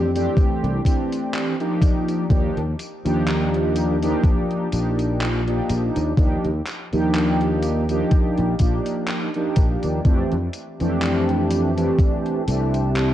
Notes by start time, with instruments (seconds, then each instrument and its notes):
Already playing: fretless electric bass F2
0.14 analog polysynth E3 A3 C4 D4 G4, closed hi-hat, tambourine
0.37 kick, closed hi-hat, tambourine
0.63 fretless electric bass C2, closed hi-hat
0.85 analog polysynth E3 A3 C4 D4 G4, kick, closed hi-hat, tambourine
1.13 closed hi-hat, tambourine
1.34 clap, closed hi-hat, tambourine
1.59 analog polysynth F3 A#3 D4 D#4 G4, closed hi-hat
1.82 kick, closed hi-hat, tambourine
2.09 closed hi-hat, tambourine
2.30 fretless electric bass D#2, analog polysynth F3 A#3 D4 D#4 G4, kick, closed hi-hat, tambourine
2.57 fretless electric bass D#2, closed hi-hat
2.79 closed hi-hat, tambourine
3.04 fretless electric bass D#2, analog polysynth F3 A#3 D4 D#4 G4, closed hi-hat, tambourine
3.28 clap, closed hi-hat, tambourine
3.54 closed hi-hat
3.76 closed hi-hat, tambourine
4.02 analog polysynth F3 A#3 D4 D#4 G4, closed hi-hat, tambourine
4.24 kick, closed hi-hat, tambourine
4.51 closed hi-hat
4.72 fretless electric bass A#1, analog polysynth F3 A#3 D4 D#4 G4, closed hi-hat, tambourine
4.99 closed hi-hat, tambourine
5.21 clap, closed hi-hat, tambourine
5.46 analog polysynth F3 A#3 D4 D#4 G4, closed hi-hat
5.70 fretless electric bass A#1, closed hi-hat, tambourine
5.96 fretless electric bass D#2, closed hi-hat, tambourine
6.17 fretless electric bass D#2, analog polysynth F3 A#3 D4 D#4 G4, kick, closed hi-hat, tambourine
6.45 fretless electric bass D#2, closed hi-hat
6.67 clap, closed hi-hat, tambourine
6.92 fretless electric bass D#2, analog polysynth F3 A#3 D4 D#4 G4, closed hi-hat, tambourine
7.15 clap, closed hi-hat, tambourine
7.41 closed hi-hat
7.62 closed hi-hat, tambourine
7.89 analog polysynth F3 A#3 D4 D#4 G4, closed hi-hat, tambourine
8.11 kick, closed hi-hat, tambourine
8.38 fretless electric bass A#1, closed hi-hat
8.59 fretless electric bass A#1, analog polysynth F3 A#3 D4 D#4 G4, kick, closed hi-hat, tambourine
8.86 closed hi-hat, tambourine
9.08 clap, closed hi-hat, tambourine
9.34 analog polysynth F3 A#3 D4 D#4 G4, closed hi-hat
9.56 fretless electric bass A#1, kick, closed hi-hat, tambourine
9.83 fretless electric bass D#2, closed hi-hat, tambourine
10.04 fretless electric bass F2, analog polysynth E3 A3 C4 D4 G4, ambient pad G4 E5 A5 D6, kick, closed hi-hat, tambourine
10.32 fretless electric bass F2, closed hi-hat
10.53 closed hi-hat, tambourine
10.80 fretless electric bass F2, analog polysynth E3 A3 C4 D4 G4, closed hi-hat, tambourine
11.02 clap, closed hi-hat, tambourine
11.29 closed hi-hat
11.51 closed hi-hat, tambourine
11.76 analog polysynth E3 A3 C4 D4 G4, closed hi-hat, tambourine
11.99 kick, closed hi-hat, tambourine
12.26 closed hi-hat
12.47 fretless electric bass C2, analog polysynth E3 A3 C4 D4 G4, closed hi-hat, tambourine
12.74 closed hi-hat, tambourine
12.96 clap, closed hi-hat, tambourine